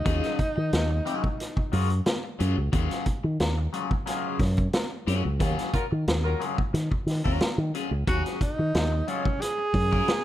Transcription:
Already playing: tenor saxophone D#4
0.05 fingered electric bass D#2, clean electric guitar F#3 C#4 F4 G#4, kick, closed hi-hat
0.24 snare, closed hi-hat
0.39 muted fingered electric bass stroke, kick, closed hi-hat
0.56 fingered electric bass D#3, muted clean electric guitar stroke
0.73 fingered electric bass D#2, snare, closed hi-hat
0.90 muted clean electric guitar stroke
1.05 clean electric guitar F#3 C#4 F4 G#4, closed hi-hat
1.24 muted clean electric guitar stroke, kick
1.40 snare, closed hi-hat
1.56 muted clean electric guitar stroke, kick
1.72 fingered electric bass F#2, clean electric guitar F#3 C#4 F4 G#4, open hi-hat
1.90 muted clean electric guitar stroke, closed hi-hat
2.06 snare, closed hi-hat
2.24 muted clean electric guitar stroke
2.39 fingered electric bass F#2, clean electric guitar F#3 C#4 F4 G#4, closed hi-hat
2.57 fingered electric bass C#2, muted clean electric guitar stroke
2.72 fingered electric bass D#2, clean electric guitar F#3 C#4 F4 G#4, kick, closed hi-hat
2.91 snare, closed hi-hat
3.06 muted fingered electric bass stroke, kick, closed hi-hat
3.24 fingered electric bass D#3, muted clean electric guitar stroke
3.40 fingered electric bass D#2, snare, closed hi-hat
3.58 muted clean electric guitar stroke
3.73 clean electric guitar F#3 C#4 F4 G#4, closed hi-hat
3.91 muted clean electric guitar stroke, kick
4.06 clean electric guitar F#3 C#4 F4 G#4, snare, closed hi-hat
4.39 fingered electric bass F#2, muted clean electric guitar stroke, kick, snare, open hi-hat
4.57 muted clean electric guitar stroke, kick, closed hi-hat
4.73 snare, closed hi-hat
4.91 muted clean electric guitar stroke
5.07 fingered electric bass F#2, clean electric guitar F#3 C#4 F4 G#4, closed hi-hat
5.24 fingered electric bass C#2, muted clean electric guitar stroke
5.40 fingered electric bass D#2, clean electric guitar F#3 C#4 F4 G#4, kick, closed hi-hat
5.59 snare, closed hi-hat
5.73 horn section F#3 F4 A#4, muted fingered electric bass stroke, kick, closed hi-hat
5.91 fingered electric bass D#3, muted clean electric guitar stroke
6.08 fingered electric bass D#2, snare, closed hi-hat
6.24 horn section F#3 F4 A#4, muted clean electric guitar stroke
6.40 clean electric guitar F#3 C#4 F4 G#4, closed hi-hat
6.58 muted clean electric guitar stroke, kick
6.73 fingered electric bass D#3, muted clean electric guitar stroke, snare, closed hi-hat
6.91 muted clean electric guitar stroke, kick
7.06 fingered electric bass D#3, snare, open hi-hat
7.24 fingered electric bass D#2, clean electric guitar F#3 C#4 F4 A#4, kick
7.40 muted clean electric guitar stroke, snare, closed hi-hat
7.58 fingered electric bass D#3
7.74 clean electric guitar F#3 C#4 F4 G#4, closed hi-hat
7.91 fingered electric bass C#2, muted clean electric guitar stroke
8.07 fingered electric bass D#2, clean electric guitar F#3 C#4 G#4, tenor saxophone F#4, kick, closed hi-hat
8.26 snare, closed hi-hat
8.41 tenor saxophone D#4, muted fingered electric bass stroke, kick, closed hi-hat
8.58 fingered electric bass D#3, muted clean electric guitar stroke
8.75 fingered electric bass D#2, snare, closed hi-hat
8.92 muted clean electric guitar stroke
9.08 clean electric guitar F#3 C#4 F4 G#4, tenor saxophone C#4, closed hi-hat
9.25 muted clean electric guitar stroke, kick
9.40 tenor saxophone G#4, muted clean electric guitar stroke, snare, closed hi-hat
9.58 muted clean electric guitar stroke
9.74 fingered electric bass F#2, kick, open hi-hat
9.91 clean electric guitar F#3 C#4 F4 A#4, kick
10.08 snare, closed hi-hat

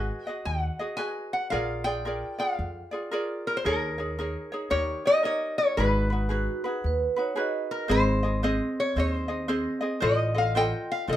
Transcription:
Already playing: ukulele F#4 G#4 B4 D#5, resonator guitar played with a steel bar G#5
0.27 ukulele F#4 G#4 D#5, resonator guitar played with a steel bar F#5
0.45 upright bass D#2, resonator guitar played with a steel bar F#5
0.79 ukulele F#4 G#4 D#5
0.97 ukulele F#4 G#4 B4 D#5, resonator guitar played with a steel bar G#5
1.33 resonator guitar played with a steel bar F#5
1.50 upright bass A#1, ukulele F4 G#4 A#4 D5, resonator guitar played with a steel bar F5
1.84 ukulele F4 G#4 D5, resonator guitar played with a steel bar G5
2.05 ukulele F4 G#4 A#4 D5
2.38 ukulele F4 G#4 D5, resonator guitar played with a steel bar F5
2.59 upright bass F2
2.91 ukulele F4 G#4 D5
3.11 ukulele F4 G#4 A#4 D5
3.47 resonator guitar played with a steel bar A#4
3.57 resonator guitar played with a steel bar C5
3.65 upright bass D#2, ukulele D#4 G#4 A#4 C#5, resonator guitar played with a steel bar A#4
3.98 ukulele D#4 G#4 C#5
4.19 ukulele D#4 G#4 A#4 C#5
4.52 ukulele D#4 G#4 C#5
4.70 upright bass D#2, ukulele D#4 G4 A#4 C#5, resonator guitar played with a steel bar C#5
5.05 ukulele D#4 G4 C#5, resonator guitar played with a steel bar D#5
5.23 ukulele D#4 G4 A#4 C#5, resonator guitar played with a steel bar D#5
5.58 resonator guitar played with a steel bar C#5
5.77 upright bass G#1, ukulele D#4 F#4 G#4 B4, resonator guitar played with a steel bar B4
6.10 ukulele D#4 F#4 B4
6.29 ukulele D#4 F#4 G#4 B4, vibraphone F#4
6.64 ukulele D#4 F#4 B4, vibraphone G#4
6.84 upright bass D#2, vibraphone B4
7.16 ukulele D#4 F#4 B4, vibraphone C#5
7.36 ukulele D#4 F#4 G#4 B4, vibraphone D#5
7.71 resonator guitar played with a steel bar A#4
7.88 upright bass G#1, ukulele C4 G#4 C5 D#5, resonator guitar played with a steel bar C5
8.23 ukulele C4 G#4 D#5
8.43 ukulele C4 G#4 C5 D#5
8.80 resonator guitar played with a steel bar C#5
8.96 upright bass D#2, ukulele C4 G#4 C5 D#5, resonator guitar played with a steel bar C#5
9.11 resonator guitar played with a steel bar C5
9.28 ukulele C4 G#4 D#5
9.48 ukulele C4 G#4 C5 D#5
9.81 ukulele C4 G#4 D#5
10.00 upright bass A1, ukulele F4 A4 C5 D#5, resonator guitar played with a steel bar D#5
10.35 ukulele F4 A4 D#5, resonator guitar played with a steel bar F5
10.55 ukulele F4 A4 C5 D#5, resonator guitar played with a steel bar G5
10.92 resonator guitar played with a steel bar F5
11.07 upright bass C2, ukulele F4 A4 C5 D#5
11.13 resonator guitar played with a steel bar D#5

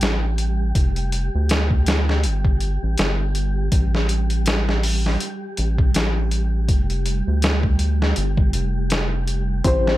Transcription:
Already playing: synth texture G3 G4
0.01 analog synth bass A1, snare, closed hi-hat
0.38 closed hi-hat
0.75 analog synth bass F1, kick, closed hi-hat
0.96 closed hi-hat
1.12 closed hi-hat
1.35 analog synth bass D2
1.49 snare, closed hi-hat
1.70 kick
1.86 snare, closed hi-hat
2.09 snare
2.24 analog synth bass G1, closed hi-hat
2.45 kick
2.60 closed hi-hat
2.83 analog synth bass A1
2.98 analog synth bass G1, snare, closed hi-hat
3.35 closed hi-hat
3.72 analog synth bass A1, kick, closed hi-hat
3.95 snare
4.09 closed hi-hat
4.30 closed hi-hat
4.46 snare, closed hi-hat
4.69 snare
4.83 open hi-hat
5.06 snare
5.20 closed hi-hat
5.57 analog synth bass A1, closed hi-hat
5.78 kick
5.94 analog synth bass A1, snare, closed hi-hat
6.31 closed hi-hat
6.68 analog synth bass F1, kick, closed hi-hat
6.90 closed hi-hat
7.06 closed hi-hat
7.27 analog synth bass D2
7.42 snare, closed hi-hat
7.63 kick
7.79 closed hi-hat
8.02 snare
8.16 analog synth bass G1, closed hi-hat
8.37 kick
8.53 analog synth bass F1, closed hi-hat
8.90 snare, closed hi-hat
9.27 closed hi-hat
9.64 analog synth bass A1, reed electric piano C4 E4 G4 C5, soft synth lead C5, string machine G5, kick, closed hi-hat
9.87 snare

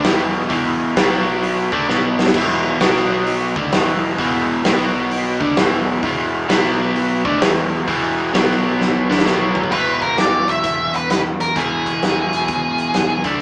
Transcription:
Already playing: tonewheel organ G#3 B3 E4 G#4
0.04 picked electric bass E1, overdriven electric guitar E2 B2 E3, snare, open hi-hat
0.49 picked electric bass E1, overdriven electric guitar E2 B2 E3, kick, open hi-hat
0.96 picked electric bass B1, overdriven electric guitar B2 F#3 B3, tonewheel organ F#3 B3 F#4 B4, snare, open hi-hat
1.43 open hi-hat
1.72 picked electric bass D2, overdriven electric guitar D3 A3 D4, kick
1.89 picked electric bass B1, overdriven electric guitar B2 F#3 B3, tonewheel organ F#3 B3 F#4 B4, snare
2.19 snare
2.26 snare
2.33 picked electric bass E1, overdriven electric guitar E2 B2 E3, tonewheel organ G#3 B3 E4 G#4, kick, crash
2.80 picked electric bass B1, overdriven electric guitar B2 F#3 B3, tonewheel organ F#3 B3 F#4 B4, snare, open hi-hat
2.96 snare
3.26 open hi-hat
3.55 picked electric bass D2, overdriven electric guitar D3 A3 D4, tonewheel organ G#3 B3 E4 G#4, kick
3.72 picked electric bass E1, overdriven electric guitar E2 B2 E3, snare, open hi-hat
4.18 picked electric bass E1, overdriven electric guitar E2 B2 E3, kick, open hi-hat
4.64 picked electric bass B1, overdriven electric guitar B2 F#3 B3, tonewheel organ F#3 B3 F#4 B4, snare, open hi-hat
5.11 open hi-hat
5.41 picked electric bass D2, overdriven electric guitar D3 A3 D4, tonewheel organ G#3 B3 E4 G#4, kick
5.56 picked electric bass E1, overdriven electric guitar E2 B2 E3, snare, open hi-hat
6.03 picked electric bass E1, overdriven electric guitar E2 B2 E3, kick, open hi-hat
6.49 picked electric bass B1, overdriven electric guitar B2 F#3 B3, tonewheel organ F#3 B3 F#4 B4, snare, open hi-hat
6.65 snare
6.95 open hi-hat
7.25 picked electric bass D2, overdriven electric guitar D3 A3 D4, tonewheel organ G#3 B3 E4 G#4, kick
7.41 picked electric bass E1, overdriven electric guitar E2 B2 E3, snare, open hi-hat
7.87 picked electric bass E1, overdriven electric guitar E2 B2 E3, kick, open hi-hat
8.33 picked electric bass B1, overdriven electric guitar B2 F#3 B3, tonewheel organ F#3 B3 F#4 B4, snare, open hi-hat
8.51 snare
8.81 snare
9.09 picked electric bass D2, overdriven electric guitar D3 A3 D4, snare
9.18 snare
9.25 picked electric bass B1, overdriven electric guitar B2 F#3 B3, tonewheel organ F#3 B3 F#4 B4, snare
9.55 floor tom
9.64 kick
9.71 picked electric bass E1, overdriven electric guitar E2 B2 E3, lead electric guitar B4, kick, crash
10.02 picked electric bass E1, lead electric guitar A#4, kick, closed hi-hat
10.18 picked electric bass E1, lead electric guitar D5, snare, closed hi-hat
10.48 picked electric bass E1, lead electric guitar E5, closed hi-hat
10.64 picked electric bass E1, kick, closed hi-hat
10.94 picked electric bass E1, lead electric guitar B4, closed hi-hat
11.10 picked electric bass E1, lead electric guitar B4, snare, closed hi-hat
11.40 picked electric bass E1, lead electric guitar A#4, closed hi-hat
11.56 picked electric bass E1, overdriven electric guitar E2 B2 E3, lead electric guitar G#4, kick, closed hi-hat
11.86 kick, closed hi-hat
12.02 picked electric bass E1, snare, closed hi-hat
12.33 picked electric bass E1, closed hi-hat
12.48 picked electric bass E1, kick, closed hi-hat
12.78 closed hi-hat
12.94 picked electric bass E1, snare, closed hi-hat
13.24 picked electric bass D2, overdriven electric guitar D3 A3 D4, kick, closed hi-hat

